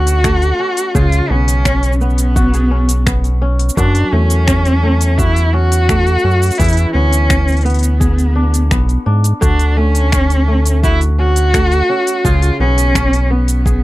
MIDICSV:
0, 0, Header, 1, 5, 480
1, 0, Start_track
1, 0, Tempo, 705882
1, 647, Time_signature, 4, 2, 24, 8
1, 9407, End_track
2, 0, Start_track
2, 0, Title_t, "Cello"
2, 0, Program_c, 0, 42
2, 0, Note_on_c, 0, 66, 114
2, 642, Note_on_c, 0, 65, 108
2, 653, Note_off_c, 0, 66, 0
2, 889, Note_on_c, 0, 61, 100
2, 899, Note_off_c, 0, 65, 0
2, 1356, Note_off_c, 0, 61, 0
2, 1360, Note_on_c, 0, 59, 101
2, 2296, Note_off_c, 0, 59, 0
2, 2562, Note_on_c, 0, 62, 94
2, 2802, Note_on_c, 0, 61, 102
2, 2812, Note_off_c, 0, 62, 0
2, 3520, Note_on_c, 0, 64, 113
2, 3530, Note_off_c, 0, 61, 0
2, 3761, Note_on_c, 0, 66, 123
2, 3772, Note_off_c, 0, 64, 0
2, 4474, Note_on_c, 0, 64, 104
2, 4484, Note_off_c, 0, 66, 0
2, 4707, Note_off_c, 0, 64, 0
2, 4711, Note_on_c, 0, 61, 111
2, 5200, Note_on_c, 0, 59, 99
2, 5210, Note_off_c, 0, 61, 0
2, 6163, Note_off_c, 0, 59, 0
2, 6406, Note_on_c, 0, 62, 97
2, 6644, Note_on_c, 0, 61, 107
2, 6654, Note_off_c, 0, 62, 0
2, 7361, Note_off_c, 0, 61, 0
2, 7365, Note_on_c, 0, 64, 109
2, 7474, Note_off_c, 0, 64, 0
2, 7605, Note_on_c, 0, 66, 127
2, 8328, Note_on_c, 0, 65, 105
2, 8338, Note_off_c, 0, 66, 0
2, 8565, Note_off_c, 0, 65, 0
2, 8569, Note_on_c, 0, 61, 110
2, 9046, Note_on_c, 0, 59, 95
2, 9056, Note_off_c, 0, 61, 0
2, 9407, Note_off_c, 0, 59, 0
2, 9407, End_track
3, 0, Start_track
3, 0, Title_t, "Kora"
3, 0, Program_c, 1, 46
3, 0, Note_on_c, 1, 50, 88
3, 0, Note_on_c, 1, 57, 62
3, 0, Note_on_c, 1, 61, 64
3, 0, Note_on_c, 1, 66, 69
3, 164, Note_off_c, 1, 57, 0
3, 167, Note_on_c, 1, 57, 59
3, 318, Note_off_c, 1, 50, 0
3, 402, Note_off_c, 1, 61, 0
3, 404, Note_on_c, 1, 61, 61
3, 644, Note_on_c, 1, 49, 83
3, 648, Note_on_c, 1, 68, 74
3, 683, Note_off_c, 1, 66, 0
3, 887, Note_on_c, 1, 59, 61
3, 1121, Note_off_c, 1, 61, 0
3, 1124, Note_on_c, 1, 61, 61
3, 1365, Note_off_c, 1, 59, 0
3, 1368, Note_on_c, 1, 59, 68
3, 1525, Note_off_c, 1, 57, 0
3, 1604, Note_on_c, 1, 66, 75
3, 1607, Note_off_c, 1, 68, 0
3, 1726, Note_on_c, 1, 68, 55
3, 1840, Note_off_c, 1, 61, 0
3, 1842, Note_on_c, 1, 61, 62
3, 2079, Note_off_c, 1, 59, 0
3, 2082, Note_on_c, 1, 59, 57
3, 2235, Note_off_c, 1, 49, 0
3, 2321, Note_off_c, 1, 61, 0
3, 2323, Note_on_c, 1, 61, 65
3, 2565, Note_on_c, 1, 42, 85
3, 2567, Note_off_c, 1, 66, 0
3, 2569, Note_on_c, 1, 66, 72
3, 2654, Note_off_c, 1, 68, 0
3, 2805, Note_on_c, 1, 57, 63
3, 3045, Note_off_c, 1, 61, 0
3, 3047, Note_on_c, 1, 61, 64
3, 3282, Note_off_c, 1, 57, 0
3, 3285, Note_on_c, 1, 57, 63
3, 3349, Note_off_c, 1, 59, 0
3, 3524, Note_off_c, 1, 66, 0
3, 3527, Note_on_c, 1, 66, 70
3, 3763, Note_off_c, 1, 61, 0
3, 3766, Note_on_c, 1, 61, 67
3, 4005, Note_off_c, 1, 57, 0
3, 4007, Note_on_c, 1, 57, 64
3, 4156, Note_off_c, 1, 42, 0
3, 4243, Note_off_c, 1, 61, 0
3, 4245, Note_on_c, 1, 61, 63
3, 4482, Note_on_c, 1, 52, 89
3, 4489, Note_on_c, 1, 68, 73
3, 4521, Note_off_c, 1, 66, 0
3, 4724, Note_on_c, 1, 59, 63
3, 5199, Note_off_c, 1, 59, 0
3, 5202, Note_on_c, 1, 59, 65
3, 5365, Note_off_c, 1, 57, 0
3, 5428, Note_off_c, 1, 61, 0
3, 5432, Note_off_c, 1, 68, 0
3, 5441, Note_on_c, 1, 68, 67
3, 5682, Note_on_c, 1, 62, 64
3, 5918, Note_off_c, 1, 59, 0
3, 5920, Note_on_c, 1, 59, 57
3, 6074, Note_off_c, 1, 52, 0
3, 6159, Note_off_c, 1, 62, 0
3, 6161, Note_on_c, 1, 62, 67
3, 6399, Note_on_c, 1, 50, 85
3, 6403, Note_off_c, 1, 68, 0
3, 6403, Note_on_c, 1, 66, 72
3, 6644, Note_on_c, 1, 57, 59
3, 6886, Note_on_c, 1, 61, 60
3, 6927, Note_off_c, 1, 62, 0
3, 7123, Note_off_c, 1, 57, 0
3, 7126, Note_on_c, 1, 57, 58
3, 7188, Note_off_c, 1, 59, 0
3, 7365, Note_off_c, 1, 66, 0
3, 7368, Note_on_c, 1, 66, 67
3, 7605, Note_off_c, 1, 61, 0
3, 7607, Note_on_c, 1, 61, 62
3, 7845, Note_off_c, 1, 57, 0
3, 7848, Note_on_c, 1, 57, 61
3, 7990, Note_off_c, 1, 50, 0
3, 8086, Note_off_c, 1, 61, 0
3, 8088, Note_on_c, 1, 61, 64
3, 8329, Note_on_c, 1, 49, 83
3, 8332, Note_on_c, 1, 68, 70
3, 8362, Note_off_c, 1, 66, 0
3, 8569, Note_on_c, 1, 59, 67
3, 8808, Note_off_c, 1, 61, 0
3, 8811, Note_on_c, 1, 61, 62
3, 9045, Note_off_c, 1, 59, 0
3, 9048, Note_on_c, 1, 59, 63
3, 9206, Note_off_c, 1, 57, 0
3, 9279, Note_off_c, 1, 68, 0
3, 9287, Note_on_c, 1, 68, 70
3, 9407, Note_off_c, 1, 49, 0
3, 9407, Note_off_c, 1, 59, 0
3, 9407, Note_off_c, 1, 61, 0
3, 9407, Note_off_c, 1, 68, 0
3, 9407, End_track
4, 0, Start_track
4, 0, Title_t, "Analog synth bass"
4, 0, Program_c, 2, 38
4, 0, Note_on_c, 2, 38, 96
4, 360, Note_off_c, 2, 38, 0
4, 646, Note_on_c, 2, 37, 100
4, 828, Note_off_c, 2, 37, 0
4, 886, Note_on_c, 2, 35, 90
4, 2520, Note_off_c, 2, 35, 0
4, 2564, Note_on_c, 2, 42, 91
4, 2747, Note_off_c, 2, 42, 0
4, 2807, Note_on_c, 2, 40, 92
4, 4200, Note_off_c, 2, 40, 0
4, 4246, Note_on_c, 2, 42, 84
4, 4428, Note_off_c, 2, 42, 0
4, 4485, Note_on_c, 2, 40, 100
4, 4668, Note_off_c, 2, 40, 0
4, 4724, Note_on_c, 2, 38, 86
4, 5921, Note_off_c, 2, 38, 0
4, 5925, Note_on_c, 2, 35, 91
4, 6108, Note_off_c, 2, 35, 0
4, 6165, Note_on_c, 2, 44, 96
4, 6348, Note_off_c, 2, 44, 0
4, 6407, Note_on_c, 2, 38, 93
4, 8040, Note_off_c, 2, 38, 0
4, 8329, Note_on_c, 2, 37, 105
4, 8510, Note_off_c, 2, 37, 0
4, 8567, Note_on_c, 2, 35, 88
4, 9407, Note_off_c, 2, 35, 0
4, 9407, End_track
5, 0, Start_track
5, 0, Title_t, "Drums"
5, 47, Note_on_c, 9, 46, 60
5, 52, Note_on_c, 9, 69, 67
5, 115, Note_off_c, 9, 46, 0
5, 120, Note_off_c, 9, 69, 0
5, 165, Note_on_c, 9, 26, 88
5, 165, Note_on_c, 9, 36, 110
5, 170, Note_on_c, 9, 69, 52
5, 233, Note_off_c, 9, 26, 0
5, 233, Note_off_c, 9, 36, 0
5, 238, Note_off_c, 9, 69, 0
5, 286, Note_on_c, 9, 46, 28
5, 291, Note_on_c, 9, 69, 29
5, 354, Note_off_c, 9, 46, 0
5, 359, Note_off_c, 9, 69, 0
5, 524, Note_on_c, 9, 46, 57
5, 530, Note_on_c, 9, 69, 66
5, 592, Note_off_c, 9, 46, 0
5, 598, Note_off_c, 9, 69, 0
5, 645, Note_on_c, 9, 36, 99
5, 650, Note_on_c, 9, 69, 62
5, 713, Note_off_c, 9, 36, 0
5, 718, Note_off_c, 9, 69, 0
5, 764, Note_on_c, 9, 46, 46
5, 769, Note_on_c, 9, 69, 35
5, 832, Note_off_c, 9, 46, 0
5, 837, Note_off_c, 9, 69, 0
5, 1006, Note_on_c, 9, 46, 54
5, 1011, Note_on_c, 9, 69, 62
5, 1074, Note_off_c, 9, 46, 0
5, 1079, Note_off_c, 9, 69, 0
5, 1124, Note_on_c, 9, 26, 106
5, 1125, Note_on_c, 9, 36, 100
5, 1130, Note_on_c, 9, 69, 60
5, 1192, Note_off_c, 9, 26, 0
5, 1193, Note_off_c, 9, 36, 0
5, 1198, Note_off_c, 9, 69, 0
5, 1243, Note_on_c, 9, 46, 47
5, 1249, Note_on_c, 9, 69, 36
5, 1311, Note_off_c, 9, 46, 0
5, 1311, Note_off_c, 9, 69, 0
5, 1311, Note_on_c, 9, 69, 27
5, 1368, Note_off_c, 9, 69, 0
5, 1368, Note_on_c, 9, 69, 23
5, 1428, Note_off_c, 9, 69, 0
5, 1428, Note_on_c, 9, 69, 19
5, 1483, Note_on_c, 9, 46, 57
5, 1488, Note_off_c, 9, 69, 0
5, 1488, Note_on_c, 9, 69, 73
5, 1551, Note_off_c, 9, 46, 0
5, 1556, Note_off_c, 9, 69, 0
5, 1605, Note_on_c, 9, 36, 108
5, 1608, Note_on_c, 9, 69, 54
5, 1673, Note_off_c, 9, 36, 0
5, 1676, Note_off_c, 9, 69, 0
5, 1725, Note_on_c, 9, 46, 31
5, 1730, Note_on_c, 9, 69, 35
5, 1793, Note_off_c, 9, 46, 0
5, 1798, Note_off_c, 9, 69, 0
5, 1964, Note_on_c, 9, 46, 61
5, 1969, Note_on_c, 9, 69, 72
5, 2032, Note_off_c, 9, 46, 0
5, 2037, Note_off_c, 9, 69, 0
5, 2085, Note_on_c, 9, 26, 90
5, 2086, Note_on_c, 9, 36, 107
5, 2090, Note_on_c, 9, 69, 55
5, 2153, Note_off_c, 9, 26, 0
5, 2154, Note_off_c, 9, 36, 0
5, 2158, Note_off_c, 9, 69, 0
5, 2204, Note_on_c, 9, 46, 28
5, 2210, Note_on_c, 9, 69, 29
5, 2272, Note_off_c, 9, 46, 0
5, 2278, Note_off_c, 9, 69, 0
5, 2444, Note_on_c, 9, 46, 57
5, 2511, Note_on_c, 9, 69, 72
5, 2512, Note_off_c, 9, 46, 0
5, 2566, Note_on_c, 9, 36, 97
5, 2570, Note_off_c, 9, 69, 0
5, 2570, Note_on_c, 9, 69, 65
5, 2634, Note_off_c, 9, 36, 0
5, 2638, Note_off_c, 9, 69, 0
5, 2685, Note_on_c, 9, 46, 44
5, 2691, Note_on_c, 9, 69, 34
5, 2753, Note_off_c, 9, 46, 0
5, 2759, Note_off_c, 9, 69, 0
5, 2924, Note_on_c, 9, 46, 49
5, 2930, Note_on_c, 9, 69, 70
5, 2992, Note_off_c, 9, 46, 0
5, 2998, Note_off_c, 9, 69, 0
5, 3044, Note_on_c, 9, 26, 112
5, 3046, Note_on_c, 9, 36, 110
5, 3049, Note_on_c, 9, 69, 61
5, 3112, Note_off_c, 9, 26, 0
5, 3114, Note_off_c, 9, 36, 0
5, 3117, Note_off_c, 9, 69, 0
5, 3165, Note_on_c, 9, 46, 40
5, 3170, Note_on_c, 9, 69, 34
5, 3233, Note_off_c, 9, 46, 0
5, 3238, Note_off_c, 9, 69, 0
5, 3405, Note_on_c, 9, 46, 58
5, 3410, Note_on_c, 9, 69, 68
5, 3473, Note_off_c, 9, 46, 0
5, 3478, Note_off_c, 9, 69, 0
5, 3526, Note_on_c, 9, 36, 102
5, 3531, Note_on_c, 9, 69, 61
5, 3594, Note_off_c, 9, 36, 0
5, 3599, Note_off_c, 9, 69, 0
5, 3647, Note_on_c, 9, 46, 33
5, 3652, Note_on_c, 9, 69, 34
5, 3715, Note_off_c, 9, 46, 0
5, 3720, Note_off_c, 9, 69, 0
5, 3889, Note_on_c, 9, 46, 57
5, 3894, Note_on_c, 9, 69, 76
5, 3957, Note_off_c, 9, 46, 0
5, 3962, Note_off_c, 9, 69, 0
5, 4006, Note_on_c, 9, 26, 89
5, 4006, Note_on_c, 9, 36, 110
5, 4011, Note_on_c, 9, 69, 53
5, 4074, Note_off_c, 9, 26, 0
5, 4074, Note_off_c, 9, 36, 0
5, 4079, Note_off_c, 9, 69, 0
5, 4125, Note_on_c, 9, 46, 27
5, 4131, Note_on_c, 9, 69, 29
5, 4193, Note_off_c, 9, 46, 0
5, 4199, Note_off_c, 9, 69, 0
5, 4210, Note_on_c, 9, 69, 25
5, 4278, Note_off_c, 9, 69, 0
5, 4290, Note_on_c, 9, 69, 20
5, 4358, Note_off_c, 9, 69, 0
5, 4365, Note_on_c, 9, 46, 25
5, 4370, Note_on_c, 9, 69, 68
5, 4393, Note_off_c, 9, 46, 0
5, 4393, Note_on_c, 9, 46, 29
5, 4424, Note_off_c, 9, 46, 0
5, 4424, Note_on_c, 9, 46, 32
5, 4430, Note_off_c, 9, 69, 0
5, 4430, Note_on_c, 9, 69, 51
5, 4454, Note_off_c, 9, 46, 0
5, 4454, Note_on_c, 9, 46, 34
5, 4485, Note_off_c, 9, 46, 0
5, 4485, Note_on_c, 9, 46, 41
5, 4486, Note_on_c, 9, 36, 101
5, 4491, Note_off_c, 9, 69, 0
5, 4491, Note_on_c, 9, 69, 61
5, 4516, Note_off_c, 9, 46, 0
5, 4516, Note_on_c, 9, 46, 41
5, 4546, Note_off_c, 9, 46, 0
5, 4546, Note_on_c, 9, 46, 49
5, 4551, Note_off_c, 9, 69, 0
5, 4551, Note_on_c, 9, 69, 38
5, 4554, Note_off_c, 9, 36, 0
5, 4574, Note_off_c, 9, 46, 0
5, 4574, Note_on_c, 9, 46, 48
5, 4604, Note_off_c, 9, 46, 0
5, 4604, Note_on_c, 9, 46, 42
5, 4609, Note_off_c, 9, 69, 0
5, 4609, Note_on_c, 9, 69, 34
5, 4672, Note_off_c, 9, 46, 0
5, 4677, Note_off_c, 9, 69, 0
5, 4845, Note_on_c, 9, 46, 50
5, 4851, Note_on_c, 9, 69, 68
5, 4913, Note_off_c, 9, 46, 0
5, 4919, Note_off_c, 9, 69, 0
5, 4964, Note_on_c, 9, 26, 103
5, 4965, Note_on_c, 9, 36, 109
5, 4969, Note_on_c, 9, 69, 65
5, 5032, Note_off_c, 9, 26, 0
5, 5033, Note_off_c, 9, 36, 0
5, 5037, Note_off_c, 9, 69, 0
5, 5084, Note_on_c, 9, 46, 19
5, 5090, Note_on_c, 9, 69, 34
5, 5115, Note_off_c, 9, 46, 0
5, 5115, Note_on_c, 9, 46, 22
5, 5146, Note_off_c, 9, 46, 0
5, 5146, Note_on_c, 9, 46, 25
5, 5158, Note_off_c, 9, 69, 0
5, 5174, Note_off_c, 9, 46, 0
5, 5174, Note_on_c, 9, 46, 27
5, 5207, Note_off_c, 9, 46, 0
5, 5207, Note_on_c, 9, 46, 32
5, 5235, Note_off_c, 9, 46, 0
5, 5235, Note_on_c, 9, 46, 31
5, 5266, Note_off_c, 9, 46, 0
5, 5266, Note_on_c, 9, 46, 36
5, 5296, Note_off_c, 9, 46, 0
5, 5296, Note_on_c, 9, 46, 37
5, 5323, Note_off_c, 9, 46, 0
5, 5323, Note_on_c, 9, 46, 55
5, 5329, Note_on_c, 9, 69, 70
5, 5391, Note_off_c, 9, 46, 0
5, 5397, Note_off_c, 9, 69, 0
5, 5445, Note_on_c, 9, 36, 98
5, 5450, Note_on_c, 9, 69, 56
5, 5513, Note_off_c, 9, 36, 0
5, 5518, Note_off_c, 9, 69, 0
5, 5565, Note_on_c, 9, 46, 28
5, 5571, Note_on_c, 9, 69, 33
5, 5633, Note_off_c, 9, 46, 0
5, 5639, Note_off_c, 9, 69, 0
5, 5806, Note_on_c, 9, 46, 52
5, 5811, Note_on_c, 9, 69, 68
5, 5874, Note_off_c, 9, 46, 0
5, 5879, Note_off_c, 9, 69, 0
5, 5924, Note_on_c, 9, 26, 83
5, 5926, Note_on_c, 9, 36, 106
5, 5929, Note_on_c, 9, 69, 47
5, 5992, Note_off_c, 9, 26, 0
5, 5994, Note_off_c, 9, 36, 0
5, 5997, Note_off_c, 9, 69, 0
5, 6045, Note_on_c, 9, 46, 28
5, 6051, Note_on_c, 9, 69, 32
5, 6113, Note_off_c, 9, 46, 0
5, 6119, Note_off_c, 9, 69, 0
5, 6284, Note_on_c, 9, 46, 54
5, 6290, Note_on_c, 9, 69, 71
5, 6352, Note_off_c, 9, 46, 0
5, 6358, Note_off_c, 9, 69, 0
5, 6406, Note_on_c, 9, 36, 99
5, 6408, Note_on_c, 9, 69, 62
5, 6474, Note_off_c, 9, 36, 0
5, 6476, Note_off_c, 9, 69, 0
5, 6524, Note_on_c, 9, 46, 44
5, 6530, Note_on_c, 9, 69, 34
5, 6592, Note_off_c, 9, 46, 0
5, 6598, Note_off_c, 9, 69, 0
5, 6765, Note_on_c, 9, 46, 46
5, 6771, Note_on_c, 9, 69, 60
5, 6833, Note_off_c, 9, 46, 0
5, 6839, Note_off_c, 9, 69, 0
5, 6884, Note_on_c, 9, 26, 102
5, 6887, Note_on_c, 9, 36, 106
5, 6890, Note_on_c, 9, 69, 57
5, 6952, Note_off_c, 9, 26, 0
5, 6955, Note_off_c, 9, 36, 0
5, 6958, Note_off_c, 9, 69, 0
5, 7005, Note_on_c, 9, 46, 46
5, 7011, Note_on_c, 9, 69, 35
5, 7073, Note_off_c, 9, 46, 0
5, 7079, Note_off_c, 9, 69, 0
5, 7246, Note_on_c, 9, 46, 55
5, 7251, Note_on_c, 9, 69, 70
5, 7314, Note_off_c, 9, 46, 0
5, 7319, Note_off_c, 9, 69, 0
5, 7368, Note_on_c, 9, 36, 97
5, 7372, Note_on_c, 9, 69, 52
5, 7436, Note_off_c, 9, 36, 0
5, 7440, Note_off_c, 9, 69, 0
5, 7487, Note_on_c, 9, 46, 29
5, 7492, Note_on_c, 9, 69, 34
5, 7555, Note_off_c, 9, 46, 0
5, 7560, Note_off_c, 9, 69, 0
5, 7725, Note_on_c, 9, 46, 56
5, 7731, Note_on_c, 9, 69, 72
5, 7793, Note_off_c, 9, 46, 0
5, 7799, Note_off_c, 9, 69, 0
5, 7848, Note_on_c, 9, 26, 83
5, 7848, Note_on_c, 9, 36, 101
5, 7853, Note_on_c, 9, 69, 47
5, 7916, Note_off_c, 9, 26, 0
5, 7916, Note_off_c, 9, 36, 0
5, 7921, Note_off_c, 9, 69, 0
5, 7968, Note_on_c, 9, 46, 26
5, 7973, Note_on_c, 9, 69, 28
5, 8036, Note_off_c, 9, 46, 0
5, 8041, Note_off_c, 9, 69, 0
5, 8208, Note_on_c, 9, 46, 55
5, 8213, Note_on_c, 9, 69, 68
5, 8276, Note_off_c, 9, 46, 0
5, 8281, Note_off_c, 9, 69, 0
5, 8328, Note_on_c, 9, 36, 96
5, 8333, Note_on_c, 9, 69, 59
5, 8396, Note_off_c, 9, 36, 0
5, 8401, Note_off_c, 9, 69, 0
5, 8448, Note_on_c, 9, 46, 46
5, 8454, Note_on_c, 9, 69, 31
5, 8516, Note_off_c, 9, 46, 0
5, 8522, Note_off_c, 9, 69, 0
5, 8689, Note_on_c, 9, 46, 53
5, 8694, Note_on_c, 9, 69, 62
5, 8757, Note_off_c, 9, 46, 0
5, 8762, Note_off_c, 9, 69, 0
5, 8807, Note_on_c, 9, 36, 102
5, 8809, Note_on_c, 9, 26, 102
5, 8815, Note_on_c, 9, 69, 60
5, 8875, Note_off_c, 9, 36, 0
5, 8877, Note_off_c, 9, 26, 0
5, 8883, Note_off_c, 9, 69, 0
5, 8930, Note_on_c, 9, 46, 49
5, 8935, Note_on_c, 9, 69, 34
5, 8998, Note_off_c, 9, 46, 0
5, 9003, Note_off_c, 9, 69, 0
5, 9167, Note_on_c, 9, 46, 54
5, 9172, Note_on_c, 9, 69, 69
5, 9235, Note_off_c, 9, 46, 0
5, 9240, Note_off_c, 9, 69, 0
5, 9287, Note_on_c, 9, 36, 91
5, 9295, Note_on_c, 9, 69, 54
5, 9355, Note_off_c, 9, 36, 0
5, 9363, Note_off_c, 9, 69, 0
5, 9407, End_track
0, 0, End_of_file